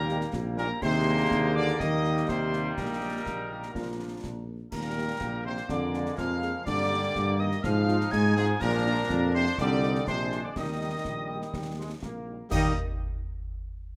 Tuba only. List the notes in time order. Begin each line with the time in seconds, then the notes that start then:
Already playing: D#2
0.33 A#1
0.81 D#2
1.30 D#2
1.79 D#2
2.28 D#2
2.77 A#1
3.25 A#1
3.74 A#1
4.23 A#1
4.72 D#2
5.21 A#1
5.69 F2
6.17 F2
6.66 G2
7.15 G2
7.64 G#2
8.13 G#2
8.61 A#1
9.10 F2
9.59 C2
10.07 A#1
10.56 D#2
11.05 A#1
11.53 D#2
12.02 A#1
12.51 D#2